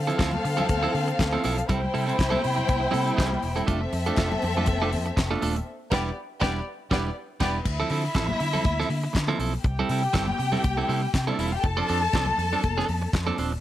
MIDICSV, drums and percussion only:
0, 0, Header, 1, 2, 480
1, 0, Start_track
1, 0, Tempo, 497925
1, 1627, Time_signature, 4, 2, 24, 8
1, 13115, End_track
2, 0, Start_track
2, 0, Title_t, "Drums"
2, 93, Note_on_c, 9, 42, 45
2, 183, Note_off_c, 9, 42, 0
2, 183, Note_on_c, 9, 42, 72
2, 185, Note_on_c, 9, 36, 112
2, 192, Note_on_c, 9, 62, 37
2, 202, Note_on_c, 9, 38, 116
2, 206, Note_on_c, 9, 39, 82
2, 280, Note_off_c, 9, 42, 0
2, 281, Note_off_c, 9, 36, 0
2, 288, Note_off_c, 9, 62, 0
2, 298, Note_off_c, 9, 38, 0
2, 303, Note_off_c, 9, 39, 0
2, 322, Note_on_c, 9, 63, 73
2, 322, Note_on_c, 9, 64, 78
2, 419, Note_off_c, 9, 63, 0
2, 419, Note_off_c, 9, 64, 0
2, 435, Note_on_c, 9, 46, 62
2, 532, Note_off_c, 9, 46, 0
2, 559, Note_on_c, 9, 42, 38
2, 575, Note_on_c, 9, 64, 76
2, 655, Note_off_c, 9, 42, 0
2, 664, Note_on_c, 9, 42, 68
2, 669, Note_on_c, 9, 36, 110
2, 671, Note_off_c, 9, 64, 0
2, 675, Note_on_c, 9, 63, 67
2, 761, Note_off_c, 9, 42, 0
2, 765, Note_off_c, 9, 36, 0
2, 771, Note_off_c, 9, 63, 0
2, 820, Note_on_c, 9, 62, 32
2, 913, Note_on_c, 9, 46, 70
2, 917, Note_off_c, 9, 62, 0
2, 917, Note_on_c, 9, 63, 56
2, 1009, Note_off_c, 9, 46, 0
2, 1014, Note_off_c, 9, 63, 0
2, 1043, Note_on_c, 9, 42, 35
2, 1140, Note_off_c, 9, 42, 0
2, 1149, Note_on_c, 9, 36, 100
2, 1155, Note_on_c, 9, 42, 73
2, 1159, Note_on_c, 9, 62, 31
2, 1166, Note_on_c, 9, 38, 110
2, 1171, Note_on_c, 9, 39, 81
2, 1246, Note_off_c, 9, 36, 0
2, 1251, Note_off_c, 9, 42, 0
2, 1256, Note_off_c, 9, 62, 0
2, 1263, Note_off_c, 9, 38, 0
2, 1267, Note_off_c, 9, 39, 0
2, 1299, Note_on_c, 9, 63, 62
2, 1386, Note_on_c, 9, 46, 65
2, 1396, Note_off_c, 9, 63, 0
2, 1483, Note_off_c, 9, 46, 0
2, 1528, Note_on_c, 9, 42, 45
2, 1624, Note_off_c, 9, 42, 0
2, 1629, Note_on_c, 9, 64, 86
2, 1632, Note_on_c, 9, 36, 114
2, 1636, Note_on_c, 9, 42, 75
2, 1725, Note_off_c, 9, 64, 0
2, 1729, Note_off_c, 9, 36, 0
2, 1732, Note_off_c, 9, 42, 0
2, 1779, Note_on_c, 9, 62, 37
2, 1875, Note_off_c, 9, 62, 0
2, 1875, Note_on_c, 9, 46, 71
2, 1972, Note_off_c, 9, 46, 0
2, 2016, Note_on_c, 9, 42, 49
2, 2111, Note_off_c, 9, 42, 0
2, 2111, Note_on_c, 9, 36, 116
2, 2111, Note_on_c, 9, 42, 81
2, 2129, Note_on_c, 9, 38, 115
2, 2134, Note_on_c, 9, 39, 83
2, 2207, Note_off_c, 9, 36, 0
2, 2207, Note_off_c, 9, 42, 0
2, 2225, Note_off_c, 9, 38, 0
2, 2230, Note_off_c, 9, 39, 0
2, 2238, Note_on_c, 9, 63, 75
2, 2238, Note_on_c, 9, 64, 73
2, 2334, Note_off_c, 9, 63, 0
2, 2334, Note_off_c, 9, 64, 0
2, 2353, Note_on_c, 9, 46, 67
2, 2450, Note_off_c, 9, 46, 0
2, 2480, Note_on_c, 9, 42, 38
2, 2486, Note_on_c, 9, 64, 70
2, 2576, Note_off_c, 9, 42, 0
2, 2582, Note_off_c, 9, 64, 0
2, 2588, Note_on_c, 9, 42, 70
2, 2588, Note_on_c, 9, 62, 34
2, 2588, Note_on_c, 9, 63, 71
2, 2594, Note_on_c, 9, 36, 123
2, 2684, Note_off_c, 9, 62, 0
2, 2684, Note_off_c, 9, 63, 0
2, 2685, Note_off_c, 9, 42, 0
2, 2690, Note_off_c, 9, 36, 0
2, 2830, Note_on_c, 9, 46, 66
2, 2844, Note_on_c, 9, 63, 54
2, 2926, Note_off_c, 9, 46, 0
2, 2940, Note_off_c, 9, 63, 0
2, 2962, Note_on_c, 9, 42, 36
2, 3058, Note_off_c, 9, 42, 0
2, 3069, Note_on_c, 9, 36, 109
2, 3076, Note_on_c, 9, 42, 70
2, 3087, Note_on_c, 9, 38, 112
2, 3092, Note_on_c, 9, 39, 93
2, 3166, Note_off_c, 9, 36, 0
2, 3173, Note_off_c, 9, 42, 0
2, 3184, Note_off_c, 9, 38, 0
2, 3188, Note_off_c, 9, 39, 0
2, 3208, Note_on_c, 9, 62, 29
2, 3208, Note_on_c, 9, 63, 69
2, 3301, Note_on_c, 9, 46, 60
2, 3305, Note_off_c, 9, 62, 0
2, 3305, Note_off_c, 9, 63, 0
2, 3397, Note_off_c, 9, 46, 0
2, 3444, Note_on_c, 9, 42, 51
2, 3540, Note_off_c, 9, 42, 0
2, 3546, Note_on_c, 9, 42, 73
2, 3548, Note_on_c, 9, 36, 112
2, 3552, Note_on_c, 9, 64, 80
2, 3643, Note_off_c, 9, 42, 0
2, 3644, Note_off_c, 9, 36, 0
2, 3648, Note_off_c, 9, 64, 0
2, 3785, Note_on_c, 9, 46, 69
2, 3881, Note_off_c, 9, 46, 0
2, 3920, Note_on_c, 9, 42, 46
2, 4014, Note_off_c, 9, 42, 0
2, 4014, Note_on_c, 9, 42, 74
2, 4024, Note_on_c, 9, 36, 117
2, 4032, Note_on_c, 9, 38, 110
2, 4037, Note_on_c, 9, 39, 84
2, 4039, Note_on_c, 9, 62, 42
2, 4110, Note_off_c, 9, 42, 0
2, 4120, Note_off_c, 9, 36, 0
2, 4128, Note_off_c, 9, 38, 0
2, 4133, Note_off_c, 9, 39, 0
2, 4135, Note_off_c, 9, 62, 0
2, 4163, Note_on_c, 9, 62, 36
2, 4163, Note_on_c, 9, 63, 76
2, 4163, Note_on_c, 9, 64, 79
2, 4259, Note_off_c, 9, 62, 0
2, 4259, Note_off_c, 9, 63, 0
2, 4259, Note_off_c, 9, 64, 0
2, 4260, Note_on_c, 9, 46, 57
2, 4357, Note_off_c, 9, 46, 0
2, 4384, Note_on_c, 9, 42, 39
2, 4402, Note_on_c, 9, 64, 78
2, 4480, Note_off_c, 9, 42, 0
2, 4493, Note_on_c, 9, 42, 68
2, 4498, Note_off_c, 9, 64, 0
2, 4500, Note_on_c, 9, 62, 33
2, 4500, Note_on_c, 9, 63, 65
2, 4507, Note_on_c, 9, 36, 121
2, 4590, Note_off_c, 9, 42, 0
2, 4596, Note_off_c, 9, 62, 0
2, 4596, Note_off_c, 9, 63, 0
2, 4603, Note_off_c, 9, 36, 0
2, 4654, Note_on_c, 9, 62, 30
2, 4748, Note_on_c, 9, 46, 69
2, 4751, Note_off_c, 9, 62, 0
2, 4752, Note_on_c, 9, 63, 57
2, 4844, Note_off_c, 9, 46, 0
2, 4848, Note_off_c, 9, 63, 0
2, 4876, Note_on_c, 9, 42, 37
2, 4973, Note_off_c, 9, 42, 0
2, 4985, Note_on_c, 9, 36, 99
2, 4989, Note_on_c, 9, 42, 77
2, 5001, Note_on_c, 9, 38, 98
2, 5005, Note_on_c, 9, 39, 80
2, 5082, Note_off_c, 9, 36, 0
2, 5086, Note_off_c, 9, 42, 0
2, 5097, Note_off_c, 9, 38, 0
2, 5102, Note_off_c, 9, 39, 0
2, 5115, Note_on_c, 9, 63, 63
2, 5211, Note_off_c, 9, 63, 0
2, 5228, Note_on_c, 9, 46, 65
2, 5325, Note_off_c, 9, 46, 0
2, 5362, Note_on_c, 9, 42, 46
2, 5459, Note_off_c, 9, 42, 0
2, 5701, Note_on_c, 9, 49, 80
2, 5704, Note_on_c, 9, 36, 106
2, 5713, Note_on_c, 9, 38, 98
2, 5797, Note_off_c, 9, 49, 0
2, 5801, Note_off_c, 9, 36, 0
2, 5809, Note_off_c, 9, 38, 0
2, 6185, Note_on_c, 9, 36, 110
2, 6198, Note_on_c, 9, 38, 108
2, 6282, Note_off_c, 9, 36, 0
2, 6295, Note_off_c, 9, 38, 0
2, 6662, Note_on_c, 9, 36, 115
2, 6672, Note_on_c, 9, 38, 100
2, 6759, Note_off_c, 9, 36, 0
2, 6768, Note_off_c, 9, 38, 0
2, 7135, Note_on_c, 9, 49, 74
2, 7140, Note_on_c, 9, 36, 104
2, 7146, Note_on_c, 9, 38, 90
2, 7231, Note_off_c, 9, 49, 0
2, 7236, Note_off_c, 9, 36, 0
2, 7243, Note_off_c, 9, 38, 0
2, 7378, Note_on_c, 9, 49, 88
2, 7379, Note_on_c, 9, 36, 104
2, 7474, Note_off_c, 9, 49, 0
2, 7476, Note_off_c, 9, 36, 0
2, 7611, Note_on_c, 9, 46, 72
2, 7707, Note_off_c, 9, 46, 0
2, 7852, Note_on_c, 9, 42, 74
2, 7857, Note_on_c, 9, 36, 104
2, 7871, Note_on_c, 9, 38, 116
2, 7875, Note_on_c, 9, 39, 93
2, 7949, Note_off_c, 9, 42, 0
2, 7953, Note_off_c, 9, 36, 0
2, 7967, Note_off_c, 9, 38, 0
2, 7972, Note_off_c, 9, 39, 0
2, 7990, Note_on_c, 9, 62, 37
2, 7990, Note_on_c, 9, 63, 82
2, 7990, Note_on_c, 9, 64, 84
2, 8086, Note_off_c, 9, 62, 0
2, 8086, Note_off_c, 9, 63, 0
2, 8086, Note_off_c, 9, 64, 0
2, 8098, Note_on_c, 9, 46, 66
2, 8195, Note_off_c, 9, 46, 0
2, 8234, Note_on_c, 9, 64, 79
2, 8329, Note_on_c, 9, 62, 31
2, 8329, Note_on_c, 9, 63, 73
2, 8330, Note_off_c, 9, 64, 0
2, 8334, Note_on_c, 9, 42, 73
2, 8339, Note_on_c, 9, 36, 107
2, 8425, Note_off_c, 9, 62, 0
2, 8425, Note_off_c, 9, 63, 0
2, 8430, Note_off_c, 9, 42, 0
2, 8436, Note_off_c, 9, 36, 0
2, 8481, Note_on_c, 9, 62, 34
2, 8486, Note_on_c, 9, 38, 35
2, 8577, Note_off_c, 9, 62, 0
2, 8579, Note_on_c, 9, 63, 56
2, 8580, Note_on_c, 9, 46, 72
2, 8582, Note_off_c, 9, 38, 0
2, 8676, Note_off_c, 9, 46, 0
2, 8676, Note_off_c, 9, 63, 0
2, 8815, Note_on_c, 9, 62, 32
2, 8819, Note_on_c, 9, 36, 96
2, 8823, Note_on_c, 9, 42, 76
2, 8835, Note_on_c, 9, 38, 108
2, 8839, Note_on_c, 9, 39, 86
2, 8911, Note_off_c, 9, 62, 0
2, 8916, Note_off_c, 9, 36, 0
2, 8920, Note_off_c, 9, 42, 0
2, 8931, Note_off_c, 9, 38, 0
2, 8936, Note_off_c, 9, 39, 0
2, 8941, Note_on_c, 9, 62, 27
2, 8941, Note_on_c, 9, 63, 64
2, 9038, Note_off_c, 9, 62, 0
2, 9038, Note_off_c, 9, 63, 0
2, 9057, Note_on_c, 9, 46, 60
2, 9154, Note_off_c, 9, 46, 0
2, 9295, Note_on_c, 9, 42, 71
2, 9296, Note_on_c, 9, 62, 39
2, 9297, Note_on_c, 9, 36, 103
2, 9391, Note_off_c, 9, 42, 0
2, 9393, Note_off_c, 9, 36, 0
2, 9393, Note_off_c, 9, 62, 0
2, 9537, Note_on_c, 9, 46, 68
2, 9633, Note_off_c, 9, 46, 0
2, 9771, Note_on_c, 9, 42, 76
2, 9776, Note_on_c, 9, 36, 113
2, 9790, Note_on_c, 9, 38, 109
2, 9794, Note_on_c, 9, 39, 92
2, 9868, Note_off_c, 9, 42, 0
2, 9872, Note_off_c, 9, 36, 0
2, 9886, Note_off_c, 9, 38, 0
2, 9890, Note_off_c, 9, 39, 0
2, 9907, Note_on_c, 9, 62, 36
2, 9907, Note_on_c, 9, 63, 79
2, 9907, Note_on_c, 9, 64, 78
2, 10004, Note_off_c, 9, 62, 0
2, 10004, Note_off_c, 9, 63, 0
2, 10004, Note_off_c, 9, 64, 0
2, 10023, Note_on_c, 9, 46, 57
2, 10119, Note_off_c, 9, 46, 0
2, 10143, Note_on_c, 9, 64, 88
2, 10239, Note_off_c, 9, 64, 0
2, 10253, Note_on_c, 9, 63, 66
2, 10257, Note_on_c, 9, 42, 70
2, 10261, Note_on_c, 9, 36, 116
2, 10350, Note_off_c, 9, 63, 0
2, 10353, Note_off_c, 9, 42, 0
2, 10357, Note_off_c, 9, 36, 0
2, 10396, Note_on_c, 9, 62, 33
2, 10492, Note_off_c, 9, 62, 0
2, 10498, Note_on_c, 9, 63, 52
2, 10504, Note_on_c, 9, 46, 70
2, 10595, Note_off_c, 9, 63, 0
2, 10600, Note_off_c, 9, 46, 0
2, 10738, Note_on_c, 9, 36, 105
2, 10739, Note_on_c, 9, 42, 76
2, 10750, Note_on_c, 9, 38, 103
2, 10751, Note_on_c, 9, 62, 29
2, 10754, Note_on_c, 9, 39, 83
2, 10834, Note_off_c, 9, 36, 0
2, 10835, Note_off_c, 9, 42, 0
2, 10846, Note_off_c, 9, 38, 0
2, 10847, Note_off_c, 9, 62, 0
2, 10851, Note_off_c, 9, 39, 0
2, 10871, Note_on_c, 9, 63, 67
2, 10967, Note_off_c, 9, 63, 0
2, 10979, Note_on_c, 9, 46, 63
2, 11076, Note_off_c, 9, 46, 0
2, 11217, Note_on_c, 9, 42, 76
2, 11219, Note_on_c, 9, 36, 113
2, 11228, Note_on_c, 9, 62, 41
2, 11313, Note_off_c, 9, 42, 0
2, 11315, Note_off_c, 9, 36, 0
2, 11325, Note_off_c, 9, 62, 0
2, 11351, Note_on_c, 9, 62, 38
2, 11447, Note_off_c, 9, 62, 0
2, 11458, Note_on_c, 9, 46, 70
2, 11555, Note_off_c, 9, 46, 0
2, 11694, Note_on_c, 9, 62, 46
2, 11695, Note_on_c, 9, 42, 81
2, 11699, Note_on_c, 9, 36, 107
2, 11713, Note_on_c, 9, 38, 108
2, 11718, Note_on_c, 9, 39, 94
2, 11790, Note_off_c, 9, 62, 0
2, 11791, Note_off_c, 9, 42, 0
2, 11795, Note_off_c, 9, 36, 0
2, 11810, Note_off_c, 9, 38, 0
2, 11814, Note_off_c, 9, 39, 0
2, 11818, Note_on_c, 9, 63, 75
2, 11818, Note_on_c, 9, 64, 72
2, 11915, Note_off_c, 9, 63, 0
2, 11915, Note_off_c, 9, 64, 0
2, 11943, Note_on_c, 9, 46, 60
2, 12039, Note_off_c, 9, 46, 0
2, 12081, Note_on_c, 9, 64, 75
2, 12178, Note_off_c, 9, 64, 0
2, 12180, Note_on_c, 9, 42, 68
2, 12180, Note_on_c, 9, 62, 34
2, 12180, Note_on_c, 9, 63, 68
2, 12184, Note_on_c, 9, 36, 103
2, 12277, Note_off_c, 9, 42, 0
2, 12277, Note_off_c, 9, 62, 0
2, 12277, Note_off_c, 9, 63, 0
2, 12280, Note_off_c, 9, 36, 0
2, 12330, Note_on_c, 9, 62, 32
2, 12333, Note_on_c, 9, 38, 36
2, 12422, Note_on_c, 9, 63, 55
2, 12424, Note_on_c, 9, 46, 72
2, 12426, Note_off_c, 9, 62, 0
2, 12429, Note_off_c, 9, 38, 0
2, 12519, Note_off_c, 9, 63, 0
2, 12520, Note_off_c, 9, 46, 0
2, 12661, Note_on_c, 9, 36, 108
2, 12664, Note_on_c, 9, 42, 70
2, 12675, Note_on_c, 9, 38, 114
2, 12680, Note_on_c, 9, 39, 85
2, 12757, Note_off_c, 9, 36, 0
2, 12760, Note_off_c, 9, 42, 0
2, 12772, Note_off_c, 9, 38, 0
2, 12776, Note_off_c, 9, 39, 0
2, 12802, Note_on_c, 9, 62, 31
2, 12802, Note_on_c, 9, 63, 69
2, 12899, Note_off_c, 9, 62, 0
2, 12899, Note_off_c, 9, 63, 0
2, 12899, Note_on_c, 9, 46, 59
2, 12996, Note_off_c, 9, 46, 0
2, 13115, End_track
0, 0, End_of_file